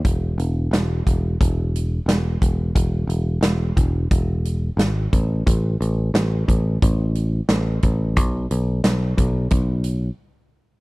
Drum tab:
HH |xxxxxxxx|xxxxxxxx|xxxxxxxx|xxxxxx--|
SD |--o---o-|--o---o-|--o---o-|--o-----|
BD |o--oo--o|o--oo--o|o--oo--o|o--oo---|